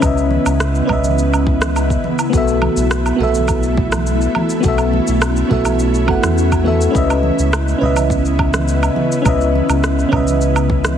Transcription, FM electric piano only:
Already playing: D#5 E5
0.00 C#4 B4 D#5
0.06 E5
0.85 C#4 B4
0.90 D#5 E5
2.30 B3 F#4
2.35 A4 E5
3.16 B3 F#4
3.21 A4 E5
4.60 B3 F#4
4.65 A4 E5
5.49 B3 F#4 A4 E5
6.07 B3 F#4 A4 F#5
6.64 B3 F#4 A4 E5
6.91 C#4 B4
6.96 D#5 E5
7.78 C#4 B4
7.83 D#5 E5
9.22 C#4 B4
9.27 D#5 E5
10.09 C#4 B4
10.14 D#5 E5

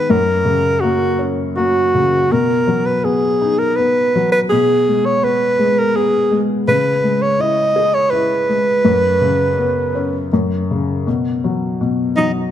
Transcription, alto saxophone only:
Already playing: B4
0.10 A#4
0.80 F#4
1.56 F#4
2.32 A#4
2.86 B4
3.04 G#4
3.58 A#4
3.76 B4
4.32 B4
4.49 G#4
5.05 C#5
5.24 B4
5.78 A#4
5.96 G#4
6.68 B4
7.22 C#5
7.41 D#5
7.94 C#5
8.10 B4
12.16 D#4

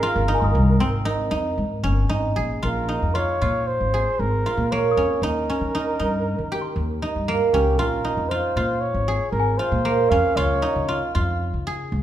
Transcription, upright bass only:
0.16 G1
0.42 G1
0.55 C2
0.81 G#1
1.32 F2
1.58 G#2
1.84 G1
2.11 G#1
2.38 A#1
2.63 A#1
3.02 F2
3.42 A#2
3.81 G#1
4.19 G#1
4.57 A#2
4.97 F2
5.22 D#2
5.61 D#3
6.00 G2
6.39 D#3
6.76 D#2
7.16 G2
7.53 C#2
7.79 A#1
8.17 F2
8.56 A#2
8.94 G#1
9.32 G#1
9.72 A#2
10.11 F2
10.36 C#2
10.76 C#3
11.15 F2
11.54 C#3
11.92 C#2

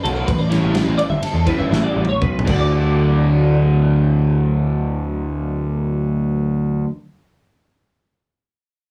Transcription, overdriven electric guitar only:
0.04 F#3 A3 C#4 F#4
0.50 E3 G3 C#4 E4
0.74 E3 G3 C#4 E4
1.46 E3 G3 C#4 E4
1.71 E3 G3 C#4 E4
2.45 D3 F#3 A3
2.49 D4

